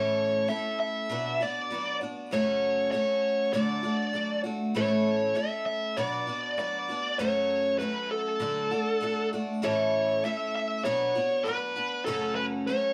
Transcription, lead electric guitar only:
0.00 0.51 C#5 medium
0.49 0.79 E5 loud
0.80 1.42 E5 loud
1.42 1.98 D5 medium
2.33 2.90 C#5 medium
2.91 3.53 C#5 medium
3.53 4.41 D5 medium
4.77 5.39 C#5 medium
5.37 5.65 E5 loud
5.66 5.98 E5 medium
5.97 6.58 D5 medium
6.59 7.19 D5 medium
7.19 7.78 C#5 medium
7.79 8.08 B4 medium
8.11 9.29 A4 medium
9.65 10.25 C#5 medium
10.25 10.54 E5 loud
10.55 10.84 E5 loud
10.85 11.48 C#5 medium
11.44 12.05 B4 medium
12.05 12.35 A4 medium
12.35 12.44 B4 medium
12.67 12.93 C#5 medium

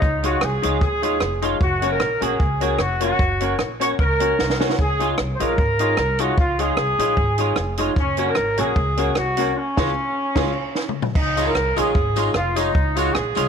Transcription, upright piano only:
0.23 0.37 D#4 medium
0.23 0.37 F4 medium
0.23 0.38 G#4 medium
0.23 0.38 C#5 medium
0.42 0.46 G#4 soft
0.42 0.46 C#5 soft
0.62 0.76 D#4 medium
0.62 0.77 F4 medium
0.62 0.77 G#4 medium
0.62 0.77 C#5 loud
1.02 1.16 D#4 medium
1.02 1.16 F4 medium
1.02 1.16 G#4 medium
1.02 1.17 C#5 loud
1.42 1.56 D#4 medium
1.42 1.56 F4 medium
1.42 1.56 G#4 medium
1.42 1.57 C#5 loud
1.81 1.96 C#4 medium
1.81 1.96 F#4 medium
1.81 1.96 A#4 medium
1.81 1.96 C#5 loud
2.01 2.05 A#4 soft
2.01 2.05 C#5 soft
2.21 2.35 C#4 medium
2.21 2.35 F#4 medium
2.21 2.36 A#4 medium
2.21 2.36 C#5 medium
2.60 2.75 C#4 medium
2.60 2.75 F#4 medium
2.60 2.75 A#4 medium
2.60 2.76 C#5 loud
3.00 3.15 C#4 medium
3.00 3.15 F#4 medium
3.00 3.15 A#4 medium
3.00 3.15 C#5 loud
3.40 3.55 C#4 medium
3.40 3.55 F#4 medium
3.40 3.55 A#4 medium
3.40 3.55 C#5 medium
3.60 3.64 A#4 soft
3.60 3.64 C#5 soft
3.80 3.94 C#4 medium
3.80 3.95 F#4 medium
3.80 3.95 A#4 medium
3.80 3.95 C#5 loud
4.20 4.34 C#4 medium
4.20 4.35 F#4 medium
4.20 4.35 A#4 medium
4.20 4.35 C#5 loud
4.59 4.74 C#4 medium
4.59 4.74 F#4 medium
4.59 4.74 A#4 medium
4.59 4.74 C#5 loud
4.99 5.14 D#4 medium
4.99 5.14 F4 medium
4.99 5.14 G#4 medium
4.99 5.14 C#5 medium
5.18 5.23 G#4 soft
5.18 5.23 C#5 soft
5.40 5.54 D#4 medium
5.40 5.54 F4 medium
5.40 5.54 G#4 medium
5.40 5.54 C#5 medium
5.80 5.94 D#4 medium
5.80 5.94 F4 medium
5.80 5.94 G#4 medium
5.80 5.94 C#5 medium
6.19 6.33 D#4 medium
6.19 6.33 F4 medium
6.19 6.34 G#4 medium
6.19 6.34 C#5 medium
6.59 6.73 D#4 medium
6.59 6.73 F4 medium
6.59 6.73 G#4 medium
6.59 6.73 C#5 medium
6.78 6.82 G#4 soft
6.78 6.82 C#5 soft
6.99 7.13 D#4 medium
6.99 7.13 F4 medium
6.99 7.13 G#4 medium
6.99 7.13 C#5 medium
7.38 7.52 D#4 medium
7.38 7.53 F4 medium
7.38 7.53 G#4 medium
7.38 7.53 C#5 loud
7.78 7.92 D#4 medium
7.78 7.92 F4 medium
7.78 7.92 G#4 medium
7.78 7.93 C#5 loud
8.18 8.32 C#4 medium
8.18 8.32 F#4 medium
8.18 8.32 A#4 medium
8.18 8.33 C#5 medium
8.58 8.72 C#4 medium
8.58 8.72 F#4 medium
8.58 8.72 A#4 medium
8.58 8.72 C#5 medium
8.97 9.12 C#4 loud
8.97 9.12 F#4 medium
8.97 9.12 A#4 medium
8.97 9.12 C#5 loud
9.37 9.51 C#4 medium
9.37 9.51 F#4 medium
9.37 9.52 A#4 medium
9.37 9.52 C#5 loud
9.77 9.90 C#4 medium
9.77 9.90 F4 medium
9.77 9.90 G#4 medium
9.77 9.90 C#5 medium
10.35 10.50 C#4 loud
10.35 10.50 F4 medium
10.35 10.51 G#4 medium
10.35 10.51 C#5 loud
11.36 11.50 D#4 medium
11.36 11.51 F4 medium
11.36 11.51 G#4 medium
11.36 11.51 C#5 medium
11.55 11.60 G#4 soft
11.55 11.60 C#5 soft
11.76 11.90 D#4 medium
11.76 11.91 F4 medium
11.76 11.91 G#4 medium
11.76 11.91 C#5 loud
12.16 12.30 D#4 medium
12.16 12.30 F4 medium
12.16 12.31 G#4 medium
12.16 12.31 C#5 medium
12.56 12.70 D#4 medium
12.56 12.70 F4 medium
12.56 12.70 G#4 medium
12.56 12.70 C#5 loud
12.96 13.10 D#4 medium
12.96 13.10 F4 medium
12.96 13.10 G#4 medium
12.96 13.10 C#5 medium
13.36 13.48 D#4 medium
13.36 13.48 F4 medium
13.36 13.48 G#4 medium
13.36 13.48 C#5 medium

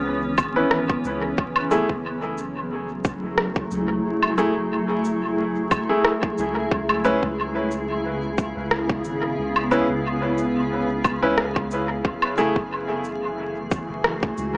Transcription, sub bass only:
0.00 0.38 C#2 medium
0.38 1.02 G#1 medium
1.04 1.34 C#2 medium
1.38 1.86 F#1 medium
1.89 3.19 F#1 medium
3.23 3.68 F#1 loud
3.71 4.01 C#2 loud
4.04 4.53 F#1 loud
4.56 5.86 F#1 medium
6.38 6.68 C#2 medium
6.71 7.19 C#2 medium
7.23 8.53 C#2 medium
8.56 9.02 C#2 loud
9.05 9.34 G#1 loud
9.38 9.86 C#2 medium
9.89 11.19 C#2 medium
11.23 12.02 C#2 medium
12.05 12.53 F#1 medium
12.56 13.86 F#1 medium
13.89 14.35 F#1 medium
14.38 14.57 C#2 loud

